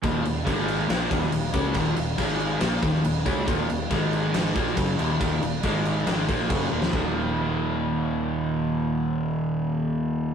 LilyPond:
<<
  \new Staff \with { instrumentName = "Overdriven electric guitar" } { \clef bass \time 4/4 \key aes \major \tempo 4 = 139 <ees, bes, ees>8 <ees, bes,>8 <aes, ees aes>4 <bes, f bes>8 <ees, bes, ees>8 <ees, bes,>8 <des aes des'>8 | <ees, bes, ees>8 <ees, bes,>8 <aes, ees aes>4 <bes, f bes>8 <ees, bes, ees>8 <ees, bes,>8 <des aes des'>8 | <ees, bes, ees>8 <ees, bes,>8 <aes, ees aes>4 <aes, ees aes>8 <bes, f bes>8 <ges, des ges>8 <ees, bes, ees>8 | <ees, bes, ees>8 <ees, bes,>8 <aes, ees aes>4 <aes, ees aes>8 <bes, f bes>8 <ges, des ges>8 <ees, bes, ees>8 |
<ees, bes, ees>1~ | <ees, bes, ees>1 | }
  \new Staff \with { instrumentName = "Fingered electric bass" } { \clef bass \time 4/4 \key aes \major ees,,8 ees,,8 aes,,4 bes,,8 ees,,8 ees,,8 des,8 | ees,,8 ees,,8 aes,,4 bes,,8 ees,,8 ees,,8 des,8 | ees,,8 ees,,8 aes,,4 aes,,8 bes,,8 ges,,8 ees,,8 | ees,,8 ees,,8 aes,,4 aes,,8 bes,,8 ges,,8 ees,,8 |
ees,,1~ | ees,,1 | }
  \new DrumStaff \with { instrumentName = "Drums" } \drummode { \time 4/4 <cymc bd>8 cymc8 <cymc bd>8 cymc8 <cymc sn>8 <cymc bd>16 sn16 cymc8 <cymc bd>8 | <cymc bd>8 cymc8 <cymc bd>8 cymc8 <cymc sn>8 <cymc bd>16 sn16 cymc8 <cymc bd>8 | <cymc bd>8 cymc8 <cymc bd>8 cymc8 <cymc sn>8 <cymc bd>16 sn16 <cymc bd>8 cymc8 | <cymc bd>8 cymc8 <cymc bd>8 cymc8 <cymc sn>8 <cymc bd>16 sn16 <cymc bd>8 tommh16 sn16 |
bd4 r4 r4 r4 | r4 r4 r4 r4 | }
>>